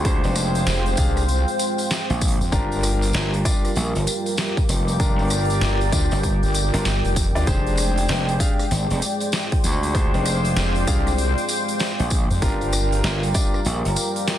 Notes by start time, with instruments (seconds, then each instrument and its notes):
Already playing: slap bass D2, analog synth pad G#3 G5, ambient pad F4 C5 G5
0.05 grand piano D4 G4 G#4 C5, analog synth pad C5, kick, open hi-hat, tambourine
0.24 slap bass F1, open hi-hat, tambourine
0.36 cross-stick, open hi-hat, tambourine
0.55 open hi-hat, tambourine
0.67 wobble bass F1, snare, open hi-hat, tambourine
0.86 open hi-hat, tambourine
0.97 wobble bass C2, grand piano D4 G4 G#4 F5, kick, open hi-hat, tambourine
1.17 cross-stick, open hi-hat, tambourine
1.29 open hi-hat, tambourine
1.48 open hi-hat, tambourine
1.59 open hi-hat, tambourine
1.78 open hi-hat, tambourine
1.91 snare, open hi-hat, tambourine
2.10 slap bass A#1, open hi-hat, tambourine
2.21 kick, open hi-hat, tambourine
2.28 open hi-hat
2.32 open hi-hat
2.41 wobble bass F2, open hi-hat, tambourine
2.52 wobble bass G1, analog synth pad G3 F4 A#4, grand piano D4 F4 G4 A#4, ambient pad G4, kick, open hi-hat, tambourine
2.72 open hi-hat, tambourine
2.83 cross-stick, open hi-hat, tambourine
3.02 open hi-hat, tambourine
3.13 slap bass G1, ambient pad D5, snare, open hi-hat, tambourine
3.33 open hi-hat, tambourine
3.45 grand piano D4 F4 G4 D5, kick, open hi-hat, tambourine
3.65 cross-stick, open hi-hat, tambourine
3.76 slap bass A#1, open hi-hat, tambourine
3.95 slap bass G1, open hi-hat, tambourine
4.07 open hi-hat, tambourine
4.26 open hi-hat, tambourine
4.37 snare, open hi-hat, tambourine
4.57 kick, open hi-hat, tambourine
4.69 slap bass F1, open hi-hat, tambourine
4.88 open hi-hat, tambourine
5.00 grand piano D4 F4 G4 A#4, kick, open hi-hat, tambourine
5.19 slap bass G1, open hi-hat, tambourine
5.22 open hi-hat
5.25 open hi-hat
5.28 cross-stick, open hi-hat, tambourine
5.31 open hi-hat
5.40 open hi-hat
5.45 open hi-hat
5.50 open hi-hat, tambourine
5.61 wobble bass G1, snare, open hi-hat, tambourine
5.81 open hi-hat, tambourine
5.92 wobble bass D2, grand piano D4 F4 G4 D5, kick, open hi-hat, tambourine
6.11 slap bass G1, cross-stick, open hi-hat, tambourine
6.23 kick, open hi-hat, tambourine
6.43 wobble bass G1, open hi-hat, tambourine
6.55 open hi-hat, tambourine
6.74 slap bass G1, grand piano D4 F4 G4 A#4, open hi-hat, tambourine
6.85 wobble bass G1, snare, open hi-hat, tambourine
7.05 wobble bass F1, open hi-hat, tambourine
7.16 kick, open hi-hat, tambourine
7.35 wobble bass D2, grand piano D4 F4 G4 D5, open hi-hat, tambourine
7.47 wobble bass F1, analog synth pad G#3 D5 G5, grand piano D4 G4 G#4 C5, ambient pad F4, kick, open hi-hat, tambourine
7.67 open hi-hat, tambourine
7.77 cross-stick, open hi-hat, tambourine
7.94 ambient pad C5, open hi-hat, tambourine
8.08 slap bass F1, snare, open hi-hat, tambourine
8.29 open hi-hat, tambourine
8.40 grand piano D4 G4 G#4 F5, kick, open hi-hat, tambourine
8.59 cross-stick, open hi-hat, tambourine
8.71 slap bass G#1, open hi-hat, tambourine
8.90 slap bass F1, open hi-hat, tambourine
9.02 open hi-hat, tambourine
9.20 open hi-hat, tambourine
9.32 snare, open hi-hat, tambourine
9.52 kick, open hi-hat, tambourine
9.64 slap bass D2, open hi-hat, tambourine
9.83 open hi-hat, tambourine
9.95 grand piano D4 G4 G#4 C5, kick, open hi-hat, tambourine
10.14 slap bass F1, open hi-hat, tambourine
10.25 cross-stick, open hi-hat, tambourine
10.45 open hi-hat, tambourine
10.57 wobble bass F1, snare, open hi-hat, tambourine
10.75 open hi-hat, tambourine
10.87 wobble bass C2, grand piano D4 G4 G#4 F5, kick, open hi-hat, tambourine
11.07 cross-stick, open hi-hat, tambourine
11.18 open hi-hat, tambourine
11.38 open hi-hat, tambourine
11.48 open hi-hat, tambourine
11.68 open hi-hat, tambourine
11.79 snare, open hi-hat, tambourine
11.99 slap bass A#1, open hi-hat, tambourine
12.10 kick, open hi-hat, tambourine
12.30 wobble bass F2, open hi-hat, tambourine
12.42 wobble bass G1, analog synth pad G3 F4 A#4, grand piano D4 F4 G4 A#4, ambient pad G4, kick, open hi-hat, tambourine
12.61 open hi-hat, tambourine
12.73 ambient pad D5, cross-stick, open hi-hat, tambourine
12.92 open hi-hat, tambourine
13.04 slap bass G1, snare, open hi-hat, tambourine
13.23 open hi-hat, tambourine
13.34 grand piano D4 F4 G4 D5, kick, open hi-hat, tambourine
13.54 cross-stick, tambourine
13.65 slap bass A#1, open hi-hat, tambourine
13.85 slap bass G1, open hi-hat, tambourine
13.96 open hi-hat, tambourine
14.16 open hi-hat, tambourine
14.28 snare, open hi-hat, tambourine